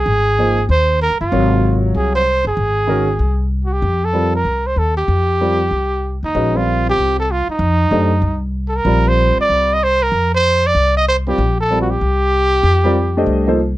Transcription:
Already playing: G#4
0.06 G#1
0.38 F3 A#3 D#4 G#4 C5
0.69 D#2 C5
1.02 A#4
1.10 C2
1.21 G1 F4
1.32 G#1 C3 F#3 F4 A#4 C#5
1.95 C2 G#4
2.15 C5
2.45 G1 G#4
2.57 G#1
2.87 D#3 G#3 C#4 F#4 A#4
3.19 C2
3.64 F#4
3.73 G4
3.82 F2
4.05 A4
4.13 G3 C4 F4 A#4 D5
4.36 A#4
4.45 C2
4.67 C5
4.76 D#2 A4
4.97 G4
5.08 F2
5.41 G3 C4 F4 A#4 D5
5.71 C2
6.23 D#2 D#4
6.35 A#1 G#3 C#4 F#4 B4 D#5
6.54 G3 C4 F4 A#4 D5
6.89 G4
6.97 C2
7.20 A4
7.31 F4
7.48 D#4, muted upright bass stroke
7.59 F2
7.91 F#2 A3 D4 G4 C5 D#5
8.22 C2
8.68 A4
8.76 A#4
8.85 A#1 G3 C4 F4 A#4 D5
9.08 C5
9.37 muted upright bass stroke
9.41 D5
9.49 C2
9.73 D#5
9.84 C5
10.03 A#4
10.12 F2
10.35 C5
10.67 D5
10.75 C2
10.97 D#5
11.08 C5
11.27 G3 C4 F4 G4 A#4 D5
11.38 A#1
11.60 A4
11.70 G3 C4 F4 A#4 D5
11.81 F#4
11.90 G4
12.01 C2
12.63 F2
12.84 G3 C4 F4 A#4 D5
13.17 A3 D4 G4 C5 D#5
13.26 C2
13.47 F3 A#3 D#4 A4 C5

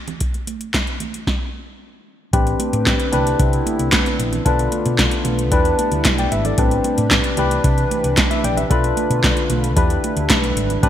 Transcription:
0.08 closed hi-hat, low conga
0.20 kick, closed hi-hat
0.34 closed hi-hat, muted conga
0.47 closed hi-hat, high conga
0.61 closed hi-hat
0.74 kick, snare, clap, closed hi-hat
0.87 closed hi-hat
1.00 closed hi-hat, high conga, low conga
1.14 closed hi-hat
1.27 kick, snare
2.33 A1 D3 C4 D4 G4 B4, kick, closed hi-hat, muted conga
2.47 closed hi-hat, muted conga
2.60 closed hi-hat, high conga
2.73 A2, closed hi-hat
2.87 kick, snare, clap, closed hi-hat
3.00 closed hi-hat, muted conga
3.12 C2 B3 C4 D4 E4 G4 B4, closed hi-hat, high conga, low conga
3.27 closed hi-hat
3.40 C3, kick, closed hi-hat
3.53 closed hi-hat
3.66 closed hi-hat, high conga
3.79 C2, closed hi-hat
3.92 kick, snare, clap, closed hi-hat, muted conga, high conga
4.06 closed hi-hat, muted conga, high conga
4.19 A#1, closed hi-hat
4.33 closed hi-hat, low conga
4.45 B1 A3 B3 D4 F4 A4 B4, kick, closed hi-hat
4.59 closed hi-hat
4.72 closed hi-hat, high conga
4.86 B2, closed hi-hat
4.99 kick, snare, clap, closed hi-hat, muted conga
5.11 closed hi-hat, muted conga
5.25 B1, closed hi-hat, high conga, low conga
5.39 closed hi-hat
5.51 E2 G3 D4 E4 G4 B4, kick, closed hi-hat
5.65 closed hi-hat, muted conga
5.79 closed hi-hat, high conga
5.92 D2, closed hi-hat
6.04 B1, kick, snare, clap, closed hi-hat, high conga
6.18 D5 G5, closed hi-hat, muted conga, high conga
6.32 G#1 B4 E5, closed hi-hat
6.45 A4 D5, closed hi-hat, low conga
6.57 A1 C3 G3 C4 D4 G4 B4, kick, closed hi-hat
6.71 closed hi-hat, muted conga
6.84 closed hi-hat, high conga
6.98 A2, closed hi-hat
7.11 kick, snare, clap, closed hi-hat
7.24 closed hi-hat
7.37 C2 C3 E3 D4 E4 G4 B4, closed hi-hat, high conga, low conga
7.51 closed hi-hat
7.64 C3, kick, closed hi-hat, muted conga
7.78 closed hi-hat
7.91 closed hi-hat, high conga
8.04 C2, closed hi-hat
8.17 kick, snare, clap, closed hi-hat, muted conga, high conga
8.31 B4 E5, closed hi-hat, muted conga, high conga
8.44 A#1 D5 G5, closed hi-hat
8.57 B4 E5, closed hi-hat, low conga
8.70 B1 D3 A3 D4 F4 A4 B4, kick, closed hi-hat
8.84 closed hi-hat, muted conga
8.97 closed hi-hat, high conga
9.10 B2, closed hi-hat
9.24 kick, snare, clap, closed hi-hat
9.37 closed hi-hat, muted conga
9.50 B1, closed hi-hat, high conga, low conga
9.64 closed hi-hat
9.76 E2 D3 G3 D4 E4 G4 B4, kick, closed hi-hat, muted conga, low conga
9.90 closed hi-hat, muted conga
10.04 closed hi-hat, high conga
10.16 D2, closed hi-hat
10.29 B1, kick, snare, clap, closed hi-hat, muted conga, high conga
10.43 closed hi-hat, high conga
10.56 G#1, closed hi-hat
10.70 closed hi-hat, low conga
10.83 A1 C3 C4 D4 G4 B4, kick, closed hi-hat

